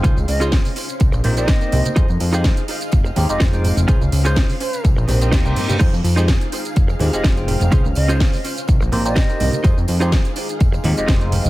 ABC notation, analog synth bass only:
X:1
M:4/4
L:1/16
Q:"Swing 16ths" 1/4=125
K:Fm
V:1 name="Analog synth bass" clef=bass
D,, D,, D,,3 z3 C,, B,,, B,,,3 z C,, z | F,, F,, F,,3 z3 F,,, z E,, F,,, F,,,3 F,,, | D,, D,, D,,3 z3 C,, B,,, B,,,2 E,, C,, G,, G,, | F,, F,, F,,3 z3 F,,, z E,, F,,, F,,,3 F,,, |
D,, D,, D,,3 z3 C,, B,,, B,,,3 z C,, z | F,, F,, F,,3 z3 F,,, z E,, F,,, F,,,3 F,,, |]